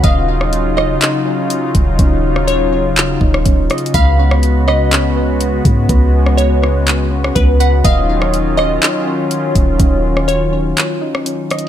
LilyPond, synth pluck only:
\new Staff \with { instrumentName = "Synth pluck" } { \time 4/4 \key ees \minor \tempo 4 = 123 f''4. ees''8 r2 | r4 des''4 r2 | f''4. ees''8 r2 | r4 des''2 ces''8 ges''8 |
f''4. ees''8 r2 | r4 des''4 r2 | }